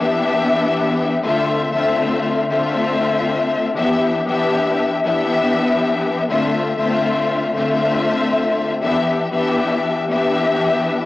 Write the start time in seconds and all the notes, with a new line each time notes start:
0.00 E3 B3 D4 G4 E5
1.24 D3 A3 C4 F4 E5
1.72 D3 A3 C4 F4 E5
2.50 D3 A3 C4 F4 E5
3.76 E3 B3 D4 G4 E5
4.26 E3 B3 D4 G4 E5
5.04 E3 B3 D4 G4 E5
6.29 D3 A3 C4 F4 E5
6.77 D3 A3 C4 F4 E5
7.55 D3 A3 C4 F4 E5
8.81 E3 B3 D4 G4 E5
9.32 E3 B3 D4 G4 E5
10.10 E3 B3 D4 G4 E5